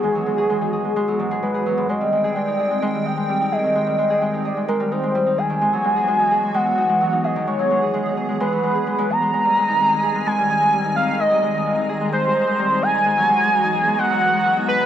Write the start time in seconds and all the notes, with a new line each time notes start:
Already playing: D#3 E3 B3 D#4 F#4 G#4
0.03 G#3
0.15 F#3
0.26 G#3
0.38 G#4
0.50 G#3
0.61 D#4
0.73 G#4
0.85 G#3
0.96 G#3
1.08 F#3
1.20 G#2
1.31 G#4
1.43 G#3 B4
1.54 G#4
1.66 F#3
1.78 G#2
1.89 D#3 G#3 C4 D#5 G5
2.01 G3
2.12 G#3
2.24 G#4
2.36 G#3 D5
2.47 D#4
2.59 G#4
2.71 G#3
2.82 G#3 D#5
2.94 G3
3.05 D#4 G5
3.17 G#3
3.29 G3
3.40 D#4
3.52 G#4 D#5
3.64 D#3
3.75 G#3
3.87 G3
3.99 G#3
4.10 G#4
4.22 G#3
4.33 D#4
4.45 G#4 D5
4.57 G#3
4.68 G#3 A#4
4.80 G3
4.92 D#4 C5
5.03 G#3
5.15 G3
5.26 D#4
5.38 G#4 G#5
5.50 D#3
5.61 E3 G#3 B3 F#4
5.73 F#3
5.85 G#3
5.96 G#4
6.08 G#3
6.19 D#4
6.31 G#4
6.43 G#3
6.54 G#3 F#5
6.66 F#3
6.78 D#4
6.89 G#3
7.01 F#3
7.12 D#4
7.24 G#4 D#5
7.36 D#3
7.47 G#3 G#4 C#5
7.59 F#3
7.71 G#3
7.82 G#4
7.94 G#3
8.05 D#4
8.17 G#4
8.29 G#3
8.40 G#3 B4
8.52 F#3
8.64 G#3
8.75 G#4
8.87 G#3
8.98 G#3
9.10 B3 A#5
9.22 G#3
9.33 D#3 G#3 C4 G#5 A#5
9.45 G3
9.57 G#3
9.68 D#4
9.80 G#3
9.92 D#4
10.03 G#4
10.15 G#3
10.26 G#3 G#5
10.38 G3
10.50 D#4
10.61 G#3
10.73 G3
10.85 D#4
10.96 G#4 F5
11.08 D#3
11.19 G#3 D#5
11.31 G3
11.43 G#3
11.54 D#4
11.66 G#3
11.78 D#4
11.89 G#4
12.01 G#3
12.12 G#3 C5
12.24 G3
12.36 D#4
12.47 G#3
12.59 G3
12.71 D#4
12.82 G#4 G#5
12.94 D#3
13.05 E3 G#3 B3 F#4
13.17 F#3
13.29 G#3
13.40 D#4
13.52 G#3
13.64 D#4
13.75 G#4
13.87 G#3
13.99 G#3 F#5
14.10 F#3
14.22 D#4
14.33 G#3
14.45 F#3
14.57 D#4
14.68 G#4 B4
14.80 D#3